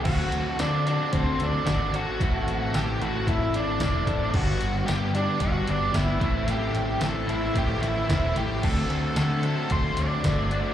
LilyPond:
<<
  \new Staff \with { instrumentName = "String machine" } { \time 4/4 \key a \dorian \tempo 4 = 112 << { r1 | r1 | <g b''>2.~ <g b''>8 <a' c'''>8~ | <a' c'''>1~ |
<a' c'''>1 | } \\ { r1 | r1 | <d'' fis''>2.~ <d'' fis''>8 <e'' g''>8~ | <e'' g''>1 |
<d'' fis''>1 | } >> }
  \new Staff \with { instrumentName = "Lead electric guitar" } { \time 4/4 \key a \dorian fis'4 d'8 d'8 c'8 d'8 d'8 fis'8~ | fis'4 g'8 fis'8 e'8 d'8 d'4 | fis'4 g'8 d'8 fis'8 d'8 e'4 | g'4 a'8 e'8 g'8 e'8 e'8 g'8 |
a'8 a'8 a'4 c''8 d'4. | }
  \new Staff \with { instrumentName = "Overdriven electric guitar" } { \time 4/4 \key a \dorian <d c' fis' a'>4 <d c' fis' a'>8 <d c' fis' a'>8 <d c' fis' a'>4 <d c' fis' a'>8 <d c' fis' a'>8 | <a, e c' e' a'>4 <a, e c' e' a'>8 <a, e c' e' a'>8 <a, e c' e' a'>4 <a, e c' e' a'>8 <a, e c' e' a'>8 | <g, d g b d' g'>4 <g, d g b d' g'>8 <g, d g b d' g'>8 <g, d g b d' g'>4 <g, d g b d' g'>8 <a, e a c' e'>8 | <a, e a c' e'>4 <a, e a c' e'>8 <a, e a c' e'>8 <a, e a c' e'>4 <a, e a c' e'>8 <a, e a c' e'>8 |
<d a c' fis'>4 <d a c' fis'>8 <d a c' fis'>8 <d a c' fis'>4 <d a c' fis'>8 <d a c' fis'>8 | }
  \new Staff \with { instrumentName = "Fingered electric bass" } { \clef bass \time 4/4 \key a \dorian d,8 d,8 d4 d,8 d,8 aes,,4 | a,,8 a,,8 a,,8 a,,8 a,8 a,,8 e,,8 a,,8 | g,,8 g,,8 g,4 g,,8 g,,8 g,,8 a,,8 | a,,8 a,,8 a,,8 a,,8 a,8 a,,8 e,,8 a,,8 |
d,8 d,8 d4 d,8 d,8 g,,4 | }
  \new DrumStaff \with { instrumentName = "Drums" } \drummode { \time 4/4 <cymc bd>8 hh16 sn16 <hh sn tamb>8 hh8 <hh bd>8 <hh sn>8 <hh bd sn tamb>8 hh8 | <hh bd>8 hh8 <hh sn tamb>8 hh8 <hh bd>8 hh8 <hh bd sn tamb>8 <hh bd>8 | <cymc bd>8 hh16 sn16 <hh sn tamb>8 hh8 <hh bd>8 hh8 <hh bd sn tamb>8 <hh bd>8 | hh8 hh8 <hh sn tamb>8 hh8 <hh bd>8 <hh sn>8 <hh bd sn tamb>8 hh8 |
<cymc bd>8 hh8 <hh sn tamb>8 hh8 <hh bd>8 hh8 <hh bd sn tamb>8 hh8 | }
>>